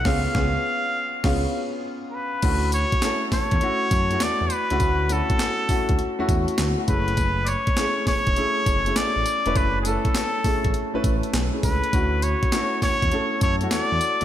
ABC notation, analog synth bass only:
X:1
M:4/4
L:1/16
Q:"Swing 16ths" 1/4=101
K:Dlyd
V:1 name="Analog synth bass" clef=bass
C,,2 C,,2 z4 C,,2 z6 | D,,3 z3 E,, E,, z2 F,,2 E,, E,, z C,, | D,,3 z3 D,, D,, z E,, E,, z D,, z F,,,2- | F,,,3 z3 E,,, E,,, z2 F,,,2 A,,, A,,, z E,,, |
F,,,3 z3 A,,, A,,, z A,,, A,,, z B,,, z C,, z | D,,3 z3 E,, E,, z2 F,,2 E,, E,, z2 |]